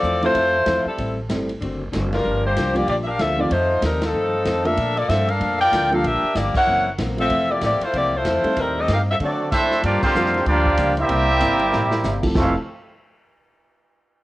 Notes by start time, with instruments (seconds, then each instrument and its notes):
Already playing: saxophone section C4 F4 A4 D5
0.02 upright bass E2, hollow-body jazz guitar F3 A3 C4 E4, hi-hat pedal
0.22 grand piano F3 A3 C4 E4 A4, saxophone section A3 E4 F4 C5, ride
0.34 upright bass F2, hollow-body jazz guitar F3 A3 C4 E4, kick, ride
0.66 upright bass E2, hollow-body jazz guitar F3 A3 C4 E4, kick, snare, hi-hat pedal, ride
0.85 saxophone section G3 C4 E4 A4, muted upright bass stroke
0.97 upright bass A1, hollow-body jazz guitar A2 G3 C4 E4, kick, ride
1.29 upright bass G1, hollow-body jazz guitar A2 G3 C4 E4, grand piano G3 A3 C4 E4 A4, kick, snare, hi-hat pedal, ride
1.49 ride
1.61 upright bass F#1, hollow-body jazz guitar D3 A3 C4 F#4, kick, ride
1.92 upright bass F#1, hollow-body jazz guitar D3 A3 C4 F#4, kick, snare, hi-hat pedal, ride
2.13 saxophone section G3 D4 F4 A#4, snare, ride
2.23 upright bass G1, hollow-body jazz guitar G2 F3 A#3 D4
2.46 saxophone section A#3 F4 G4 C5
2.56 upright bass C2, hollow-body jazz guitar G2 F3 A#3 D4, kick, snare, hi-hat pedal, ride
2.75 grand piano F3 G3 A#3 D4 G4, saxophone section A#3 F4 G4 D5, ride
2.87 upright bass A#1, hollow-body jazz guitar G2 F3 A#3 D4, saxophone section A#3 F4 G4 D5, kick, ride
3.04 saxophone section G4 E5
3.08 saxophone section D4 A#4 F5
3.19 upright bass D2, hollow-body jazz guitar G2 F3 A#3 D4, saxophone section C4 F4 A4 E5, kick, snare, hi-hat pedal, ride
3.38 grand piano D#3 F3 A3 C4 F4, saxophone section A#3 F4 G4 D5
3.50 hollow-body jazz guitar F2 D#3 A3 C4, upright bass F2, saxophone section A3 D#4 F4 C5, kick, ride
3.81 upright bass D#2, hollow-body jazz guitar F2 D#3 A3 C4, saxophone section G3 C4 D#4 A#4, kick, snare, hi-hat pedal, ride
4.02 saxophone section F3 C4 D#4 A4, snare, ride
4.13 hollow-body jazz guitar F2 D#3 A3 C4
4.45 hollow-body jazz guitar F2 D#3 A3 C4, upright bass F2, kick, snare, hi-hat pedal, ride
4.64 grand piano D3 F3 A3 A#3 F4, saxophone section D4 A4 A#4 E5, ride
4.76 hollow-body jazz guitar A#2 F3 A3 D4, upright bass A#2, kick, ride
4.97 saxophone section A#3 F4 A4 D5, ride
5.08 upright bass G2, hollow-body jazz guitar A#2 F3 A3 D4, saxophone section C4 F4 A4 E5, kick, snare, hi-hat pedal, ride
5.28 saxophone section D4 A4 A#4 F5, ride
5.39 upright bass F2, hollow-body jazz guitar A#2 F3 A3 D4, kick, ride
5.61 saxophone section F4 A#4 D5 G5
5.72 upright bass D2, hollow-body jazz guitar A#2 F3 A3 D4, kick, snare, hi-hat pedal, ride
5.90 grand piano D3 F3 G3 A#3 F4, saxophone section D4 A4 A#4 F5, ride
6.02 upright bass A#1, hollow-body jazz guitar G2 F3 A#3 D4, saxophone section G4 E5, kick, ride
6.06 saxophone section D4 A#4
6.23 muted upright bass stroke
6.35 upright bass G1, hollow-body jazz guitar G2 F3 A#3 D4, saxophone section A#3 F4 G4 D5, kick, snare, hi-hat pedal, ride
6.55 saxophone section E4 A#4 C#5 F#5, kick, crash
6.66 upright bass F#1, hollow-body jazz guitar F#2 E3 A#3 C4
6.98 upright bass A#1, hollow-body jazz guitar F#2 E3 A#3 C4, kick, snare, hi-hat pedal, ride
7.17 grand piano F3 A3 C4 A4 E5, saxophone section C4 F4 A4 E5, ride
7.29 upright bass F1, hollow-body jazz guitar F2 E3 A3 C4, kick, ride
7.51 saxophone section A#3 E4 G4 D5
7.61 upright bass A1, hollow-body jazz guitar F2 E3 A3 C4, saxophone section A#3 E4 G4 D5, kick, snare, hi-hat pedal, ride
7.80 saxophone section A3 E4 F4 C5, muted upright bass stroke, ride
7.93 upright bass C2, hollow-body jazz guitar F2 E3 A3 C4, saxophone section A#3 E4 G4 D5, kick, ride
8.15 saxophone section A3 E4 F4 C5
8.25 upright bass E2, hollow-body jazz guitar F2 E3 A3 C4, kick, snare, hi-hat pedal, ride
8.44 grand piano G3 A3 C4 D#4 A4, muted upright bass stroke, ride
8.56 upright bass D#2, hollow-body jazz guitar A2 G3 C4 D#4, saxophone section G3 C4 E4 A#4, kick, ride
8.79 saxophone section C4 G4 A4 D#5
8.88 upright bass G2, hollow-body jazz guitar A2 G3 C4 D#4, kick, snare, hi-hat pedal, ride
8.93 saxophone section D#4 G4 A#4 F5
9.11 saxophone section C4 F4 A4 E5
9.20 upright bass D3, hollow-body jazz guitar D3 A3 C4 F#4, trombone section F#3 A3 D4, saxophone section D5, kick, ride
9.24 saxophone section C4 F#4 A4
9.52 trombone section A3 C4 E4, trumpet section D4 A4 C5 E5, kick, snare, hi-hat pedal, crash, ride
9.71 snare
9.82 hollow-body jazz guitar G2 F3 A#3 D4, upright bass G2, trombone section F3 A#3 D4, trumpet section A#3 F4 G4 D5, kick, ride
10.03 trombone section D3 F3 C4, trumpet section A#3 F4 G4 C5, muted upright bass stroke, kick, crash
10.15 upright bass F2, hollow-body jazz guitar G2 F3 A#3 D4, grand piano G3 A#3 D4 F4 A#4, hi-hat pedal
10.26 snare
10.34 snare, ride
10.45 upright bass D2, hollow-body jazz guitar G2 F3 A#3 D4, trombone section F3 A#3 D4, trumpet section A#3 F4 G4 D5, kick, ride
10.66 kick
10.78 upright bass C#2, hollow-body jazz guitar G2 F3 A#3 D4, kick, hi-hat pedal, ride
10.97 trombone section G3 A#3 E4, trumpet section C4 G4 A#4 E5, ride
11.09 upright bass C2, hollow-body jazz guitar C3 G3 A#3 E4, kick, ride
11.40 upright bass G1, hollow-body jazz guitar C3 G3 A#3 E4, kick, hi-hat pedal, ride
11.59 ride
11.72 upright bass A1, hollow-body jazz guitar C3 G3 A#3 E4, snare
11.91 snare
12.03 upright bass G1, hollow-body jazz guitar C3 G3 A#3 E4, snare, hi-hat pedal
12.23 grand piano F3 A3 C4 E4 A4, kick, crash
12.34 upright bass F1, hollow-body jazz guitar F2 E3 A3 C4, trombone section F2 C3 E3 A3, grand piano F3 A3 C4 E4 A4, trumpet section C4 E4 A4 F5, kick, snare